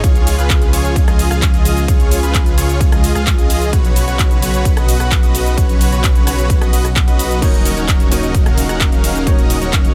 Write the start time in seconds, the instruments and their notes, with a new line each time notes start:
Already playing: analog synth pad G#3
0.04 detuned saw bass C#2, analog synth pad C#3 F3 F4 G#4, supersaw synth F4, kick, closed hi-hat, shaker
0.15 closed hi-hat, shaker
0.27 open hi-hat, ride, shaker
0.38 detuned saw bass C#2, supersaw synth F4 G#4 B4, closed hi-hat, shaker
0.50 kick, clap, closed hi-hat, shaker
0.62 closed hi-hat, shaker
0.73 detuned saw bass C#2, supersaw synth F4 G#4 C#5, open hi-hat, ride, shaker
0.85 closed hi-hat, shaker
0.96 kick, closed hi-hat, shaker
1.07 detuned saw bass C#2, supersaw synth F4 G#4 D#5, cross-stick, closed hi-hat, shaker
1.19 open hi-hat, ride, shaker
1.31 detuned saw bass C#2, supersaw synth F4 G#4 F5, cross-stick, closed hi-hat, shaker
1.42 kick, clap, closed hi-hat, shaker
1.54 detuned saw bass C#2, supersaw synth F4 G#4 D#5, closed hi-hat, shaker
1.65 open hi-hat, ride, shaker
1.77 closed hi-hat, shaker
1.88 detuned saw bass C#2, supersaw synth F4 G#4 C#5, kick, closed hi-hat, shaker
2.00 closed hi-hat, shaker
2.11 open hi-hat, ride, shaker
2.23 detuned saw bass C#2, supersaw synth F4 G#4 B4, closed hi-hat, shaker
2.34 kick, clap, closed hi-hat, shaker
2.46 closed hi-hat, shaker
2.58 detuned saw bass C#2, supersaw synth F4 G#4 C#5, open hi-hat, ride, shaker
2.69 closed hi-hat, shaker
2.81 kick, closed hi-hat, shaker
2.92 detuned saw bass C#2, supersaw synth F4 G#4 D#5, cross-stick, closed hi-hat, shaker
3.04 open hi-hat, ride, shaker
3.15 detuned saw bass C#2, supersaw synth F4 G#4 F5, cross-stick, closed hi-hat, shaker
3.27 kick, clap, closed hi-hat, shaker
3.38 detuned saw bass C#2, supersaw synth F4 G#4 D#5, closed hi-hat, shaker
3.50 open hi-hat, ride, shaker
3.62 closed hi-hat, shaker
3.73 detuned saw bass B1, analog synth pad C#3 F#3 B3 F#4 B4, supersaw synth F#4 B4 C#5, kick, closed hi-hat, shaker
3.85 closed hi-hat, shaker
3.96 open hi-hat, ride, shaker
4.07 detuned saw bass B1, supersaw synth F#4 B4 C#5, closed hi-hat, shaker
4.19 kick, clap, closed hi-hat, shaker
4.31 closed hi-hat, shaker
4.42 detuned saw bass B1, supersaw synth F#4 B4 C#5, open hi-hat, ride, shaker
4.54 closed hi-hat, shaker
4.65 kick, closed hi-hat, shaker
4.77 detuned saw bass B1, supersaw synth F#4 B4 D#5, cross-stick, closed hi-hat, shaker
4.88 open hi-hat, ride, shaker
5.00 detuned saw bass B1, supersaw synth F#4 B4 F#5, cross-stick, closed hi-hat, shaker
5.11 kick, clap, closed hi-hat, shaker
5.23 detuned saw bass B1, supersaw synth F#4 B4 D#5, closed hi-hat, shaker
5.35 open hi-hat, ride, shaker
5.46 closed hi-hat, shaker
5.58 detuned saw bass B1, supersaw synth F#4 B4 C#5, kick, closed hi-hat, shaker
5.69 closed hi-hat, shaker
5.81 open hi-hat, ride, shaker
5.92 detuned saw bass B1, supersaw synth F#4 B4 C#5, closed hi-hat, shaker
6.04 kick, clap, closed hi-hat, shaker
6.15 closed hi-hat, shaker
6.27 detuned saw bass B1, supersaw synth F#4 B4 C#5, cross-stick, open hi-hat, ride, shaker
6.38 closed hi-hat, shaker
6.50 kick, closed hi-hat, shaker
6.61 detuned saw bass B1, supersaw synth F#4 B4 D#5, cross-stick, closed hi-hat, shaker
6.73 detuned saw bass B1, supersaw synth F#4 B4 D#5, open hi-hat, ride, shaker
6.85 cross-stick, closed hi-hat, shaker
6.96 kick, clap, closed hi-hat, shaker
7.07 detuned saw bass B1, supersaw synth F#4 B4 D#5, closed hi-hat, shaker
7.19 open hi-hat, ride, shaker
7.31 closed hi-hat, shaker
7.41 detuned saw bass D#1, analog synth pad C#3 A#3 D#4, felt piano A#3 D#4 F#4 C#5, supersaw synth C#4 D#4 A#4 D#5, kick, closed hi-hat, crash, shaker
7.54 closed hi-hat, shaker
7.65 open hi-hat, ride, shaker
7.77 detuned saw bass D#1, supersaw synth C#4 D#4 F#4 A#4 C#5, closed hi-hat, shaker
7.88 kick, clap, closed hi-hat, shaker
8.00 closed hi-hat, shaker
8.10 detuned saw bass D#1, felt piano A#3 D#4 F#4 C#5, supersaw synth C#4 D#4 F#4 A#4 D#5, open hi-hat, ride, shaker
8.23 closed hi-hat, shaker
8.35 kick, closed hi-hat, shaker
8.46 detuned saw bass D#1, supersaw synth C#4 D#4 F#4 A#4 F5, cross-stick, closed hi-hat, shaker
8.58 open hi-hat, ride, shaker
8.69 detuned saw bass D#1, supersaw synth C#4 D#4 F#4 A#4 F#5, cross-stick, closed hi-hat, shaker
8.81 kick, clap, closed hi-hat, shaker
8.92 detuned saw bass D#1, supersaw synth C#4 D#4 F#4 A#4 F5, closed hi-hat, shaker
9.04 open hi-hat, ride, shaker
9.15 closed hi-hat, shaker
9.26 detuned saw bass D#1, felt piano A#3 D#4 F#4 C#5, supersaw synth C#4 D#4 F#4 A#4 D#5, kick, closed hi-hat, shaker
9.39 closed hi-hat, shaker
9.50 open hi-hat, ride, shaker
9.61 detuned saw bass D#1, supersaw synth C#4 D#4 F#4 A#4 C#5, closed hi-hat, shaker
9.73 kick, clap, closed hi-hat, shaker
9.85 closed hi-hat, shaker